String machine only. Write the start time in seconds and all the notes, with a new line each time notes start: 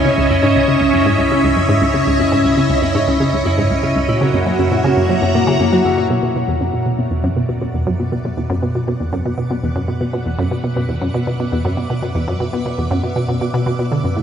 Already playing: C#4 C#5 D#5 E5
4.09 F#4
5.00 A#5
6.10 B3
6.67 B4
6.75 D5
7.36 F#5
10.01 E5
14.17 A3